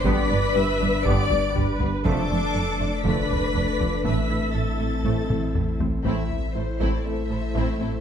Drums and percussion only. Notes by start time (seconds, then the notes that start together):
0.05 taiko
1.05 taiko
1.30 taiko low
1.55 taiko low
1.80 taiko low
2.06 taiko
3.05 taiko
3.30 taiko low
3.55 taiko low
3.81 taiko low
4.05 taiko
5.05 taiko
5.30 taiko mid
5.55 taiko low-mid
5.80 taiko low
6.05 taiko
6.30 taiko low
6.80 taiko
7.55 taiko